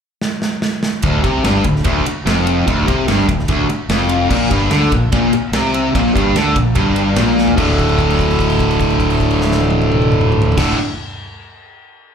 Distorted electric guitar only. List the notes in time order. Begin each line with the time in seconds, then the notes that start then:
1.04 D2
1.23 C3
1.45 G2
1.65 D2
1.84 D2
2.07 muted distorted electric guitar stroke
2.26 F2
2.67 D2
2.87 C3
3.08 G2
3.29 D2
3.49 D2
3.69 muted distorted electric guitar stroke
3.90 F2
4.30 A#2
4.51 G2
4.71 D3
4.93 A#2
5.12 A#2
5.34 muted distorted electric guitar stroke
5.54 C3
5.95 A#2
6.15 G2
6.36 D3
6.55 A#2
6.75 G2
7.17 A#2
7.56 D2 A2
7.60 D3
10.57 D2 A2
10.61 D3